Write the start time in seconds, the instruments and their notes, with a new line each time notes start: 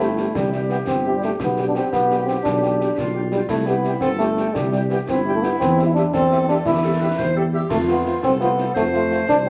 Already playing: tuba G1, woodwind section E4
0.00 euphonium A3, trumpet section G5, snare
0.17 french horn section G3 E4 G4, trumpet section G5, snare
0.35 tuba C2, euphonium G3, woodwind section G4, concert bass drum, snare
0.52 french horn section G3 E4 G4, euphonium G3, trumpet section G5, snare
0.69 french horn section G3 E4 G4, euphonium B3, trumpet section G5, snare
0.87 tuba G1, euphonium C4, concert bass drum, snare
1.05 french horn section G3 E4 G4, trumpet section G5
1.17 euphonium G3
1.22 french horn section G3 E4 G4, euphonium A3, trumpet section G5, snare
1.40 tuba B1, euphonium B3, woodwind section G4, concert bass drum, snare
1.57 french horn section G3 D4 G4, trumpet section G5, snare
1.68 euphonium D4
1.75 french horn section G3 D4 G4, euphonium C4, trumpet section G5, snare
1.93 tuba B1, euphonium B3, concert bass drum, snare
2.11 french horn section G3 D4 G4, trumpet section G5, snare
2.20 euphonium B3
2.26 french horn section G3 D4 G4, euphonium C4, trumpet section G5, snare
2.43 tuba B1, euphonium D4, concert bass drum, snare
2.62 french horn section G3 D4 G4, trumpet section G5, snare
2.81 french horn section G3 D4 G4, trumpet section G5, snare
2.98 tuba B1, woodwind section F4, concert bass drum, snare
3.14 french horn section G3 D4 G4, trumpet section G5
3.31 euphonium G3, french horn section G3 D4 G4, trumpet section G5, snare
3.49 tuba C2, euphonium A3, woodwind section E4, concert bass drum, snare, crash
3.66 french horn section G3 E4 G4, euphonium B3, trumpet section G5, snare
3.84 french horn section G3 E4 G4, trumpet section G5, snare
4.01 tuba G1, euphonium C4, woodwind section A4, concert bass drum, snare
4.18 french horn section G3 E4 G4, euphonium A3, trumpet section G5, snare
4.37 french horn section G3 E4 G4, trumpet section G5, snare
4.54 tuba C2, euphonium G3, woodwind section G4, concert bass drum, snare
4.72 euphonium G3, french horn section G3 E4 G4, trumpet section G5, snare
4.90 french horn section G3 E4 G4, euphonium B3, trumpet section G5, snare
5.08 tuba G1, euphonium C4, woodwind section E4, concert bass drum, snare
5.26 french horn section G3 E4 G4, trumpet section G5
5.35 euphonium A3
5.42 french horn section G3 E4 G4, euphonium B3, trumpet section G5, snare
5.60 tuba E2, euphonium C4, concert bass drum, snare
5.77 french horn section G3 C4 G4, trumpet section E5, snare
5.86 euphonium E4
5.94 french horn section G3 C4 G4, euphonium D4, trumpet section E5, snare
6.13 tuba E2, euphonium C4, woodwind section A4, concert bass drum, snare
6.30 french horn section G3 C4 G4, trumpet section E5, snare
6.41 euphonium C4
6.48 french horn section G3 C4 G4, euphonium D4, trumpet section E5, snare
6.66 tuba E2, euphonium E4, woodwind section G4, concert bass drum, snare
6.83 french horn section G3 C4 G4, woodwind section A4, trumpet section E5
7.00 french horn section G3 C4 G4, woodwind section B4, trumpet section E5
7.18 tuba E2, woodwind section C5, concert bass drum, snare
7.35 french horn section G3 C4 G4, woodwind section A4, trumpet section E5
7.53 french horn section G3 C4 G4, woodwind section G4, trumpet section E5
7.70 tuba F2, euphonium A3, woodwind section F4, concert bass drum, snare, crash
7.87 french horn section A3 C4 F4, euphonium B3, trumpet section C5, snare
8.04 french horn section A3 C4 F4, trumpet section C5, snare
8.23 tuba C2, euphonium C4, woodwind section A4, concert bass drum, snare
8.40 french horn section A3 C4 F4, euphonium B3, trumpet section C5, snare
8.58 french horn section A3 C4 F4, trumpet section C5, snare
8.74 tuba F2, euphonium A3, woodwind section C5, concert bass drum, snare
8.93 french horn section A3 C4 F4, euphonium A3, trumpet section C5, snare
9.10 french horn section A3 C4 F4, trumpet section C5, snare
9.29 tuba C2, euphonium D4, concert bass drum, snare
9.46 french horn section A3 C4 F4